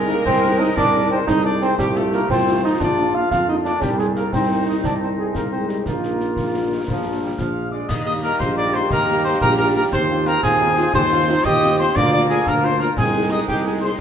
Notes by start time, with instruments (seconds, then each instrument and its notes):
Already playing: tuba C2, trombone section D#3 G#3, euphonium G#3, woodwind section A#4
0.09 french horn section G#3 C4 D#4, euphonium A#3, cornet A#4, snare
0.25 tuba C2, euphonium C4, cornet C5, concert bass drum, snare
0.44 french horn section G#3 C4 D#4
0.59 french horn section G#3 C4 D#4, euphonium D#4, cornet D#5
0.77 tuba C2, euphonium D4, cornet D5, concert bass drum, snare
0.95 french horn section G#3 C4 D#4
1.10 french horn section G#3 C4 D#4, euphonium C4, cornet C5
1.27 tuba C2, euphonium D#4, woodwind section G#4, cornet D#5, concert bass drum, snare
1.45 french horn section G#3 C4 D#4, euphonium D4, cornet D5
1.62 french horn section G#3 C4 D#4, euphonium C4, cornet C5, snare
1.78 tuba C2, trombone section F3 A3, euphonium G3, woodwind section G4, cornet G4, concert bass drum, snare
1.96 euphonium A3, french horn section A3 D#4 F4, cornet A4, snare
2.12 french horn section A3 D#4 F4, euphonium A#3, cornet A#4, snare
2.29 tuba C2, euphonium C4, woodwind section F4, cornet C5, concert bass drum, snare
2.48 french horn section A3 D#4 F4
2.64 french horn section A3 D#4 F4, euphonium D#4, cornet D#5
2.80 tuba A#1, trombone section A#3, euphonium D4, woodwind section F4, cornet D5, concert bass drum, snare
2.99 french horn section A#3 D4 F4
3.14 french horn section A#3 D4 F4, euphonium F4, cornet F5
3.31 tuba F2, woodwind section D4, euphonium F4, cornet F5, concert bass drum, snare
3.48 french horn section A#3 D4 F4, euphonium D#4, cornet D#5
3.65 french horn section A#3 D4 F4, euphonium D4, cornet D5, snare
3.82 tuba C2, trombone section D#3 C4, euphonium G3, french horn section G3 D#4, cornet G4, concert bass drum, snare, crash
3.99 euphonium G#3, cornet G#4, snare
4.15 euphonium A#3, cornet A#4, snare
4.33 tuba C2, french horn section G3 D#4, euphonium C4, woodwind section D#4, cornet C5, concert bass drum, snare
4.67 euphonium D#4, cornet D#5
4.84 tuba C2, euphonium D4, cornet D5, concert bass drum, snare
5.01 euphonium C4, cornet C5
5.18 euphonium G#3, cornet G#4
5.35 tuba C2, euphonium A#3, woodwind section D#4, cornet A#4, concert bass drum, snare
5.52 french horn section G#3, euphonium C4, cornet C5
5.69 euphonium G3, cornet G4, snare
5.86 tuba A#1, trombone section F3 D#4, french horn section A#3 D#4 F4, euphonium A#3, woodwind section F4, cornet A#4, concert bass drum, snare
6.03 snare
6.20 snare
6.37 tuba A#1, trombone section C3, concert bass drum, snare
6.54 trombone section D3
6.72 trombone section D#3
6.88 tuba A#1, trombone section F3, french horn section A#3 D4 F4, concert bass drum, snare
7.23 trombone section G3
7.38 tuba A#1, trombone section F3, cornet F5, piccolo F6, concert bass drum, snare
7.71 trombone section G#3, cornet D5, piccolo D6
7.88 tuba D#2, trombone section G3 A#3, euphonium G4, woodwind section G4 D#5, cornet D#5, piccolo D#6, concert bass drum, snare, crash
8.05 french horn section A#3 D#4 G4, cornet D#5, piccolo D#6
8.23 french horn section A#3 D#4 G4, cornet A#4, piccolo A#5, snare
8.39 tuba A#1, cornet C5, piccolo C6, concert bass drum, snare
8.56 french horn section A#3 D#4 G4, cornet D5, piccolo D6
8.74 french horn section A#3 D#4 G4, cornet C5, piccolo C6, snare
8.90 tuba D#2, woodwind section G4 D#5, cornet A#4, piccolo A#5, concert bass drum, snare
9.08 french horn section A#3 D#4 G4
9.24 french horn section A#3 D#4 G4, cornet C5, piccolo C6
9.41 tuba A#1, woodwind section G4 D#5, cornet A#4, piccolo A#5, concert bass drum, snare
9.58 french horn section A#3 D#4 G4, cornet A#4, piccolo A#5
9.67 woodwind section D5
9.75 french horn section A#3 D#4 G4, cornet A#4, piccolo A#5
9.92 tuba D#2, trombone section F3 C4, woodwind section F4 C5, cornet C5, piccolo C6, concert bass drum, snare, crash
10.10 french horn section C4 F4
10.26 french horn section C4 F4, cornet A#4, piccolo A#5, snare
10.43 tuba D#2, euphonium F4, woodwind section F4 C5, cornet G#4, piccolo G#5, concert bass drum, snare
10.61 french horn section C4 F4, euphonium D#4
10.77 french horn section C4 F4, euphonium F4, snare
10.94 tuba D#2, woodwind section F4 C5, euphonium G4, cornet C5, piccolo C6, concert bass drum, snare
11.12 french horn section C4 F4, euphonium F4
11.28 french horn section C4 F4, euphonium D#4
11.45 tuba D#2, woodwind section F4 C5, euphonium G4, cornet D#5, piccolo D#6, concert bass drum, snare
11.62 french horn section C4 F4
11.79 french horn section C4 F4, cornet C5, piccolo C6
11.95 tuba D2, trombone section F3 A#3, woodwind section F4 A#4, euphonium F4, cornet D5, piccolo D6, concert bass drum, snare, crash
12.12 french horn section A#3 D4 F4, cornet D5, piccolo D6
12.29 french horn section A#3 D4 F4, cornet G#4, piccolo G#5, snare
12.46 tuba D2, woodwind section F4 A#4, cornet A#4, piccolo A#5, concert bass drum, snare
12.64 french horn section A#3 D4 F4, cornet C5, piccolo C6
12.80 french horn section A#3 D4 F4, cornet A#4, piccolo A#5, snare
12.97 tuba C2, trombone section D#3 G#3, euphonium C4, woodwind section D#4 G#4, cornet G#4, piccolo G#5, concert bass drum, snare
13.14 french horn section G#3 D#4 G#4
13.31 french horn section G#3 D#4 G#4, cornet D#5, piccolo D#6
13.47 tuba C2, euphonium D#4, cornet G4, piccolo G5, concert bass drum, snare
13.66 french horn section G#3 D#4 G#4, cornet G#4, piccolo G#5
13.81 french horn section G#3 D#4 G#4, cornet C5, piccolo C6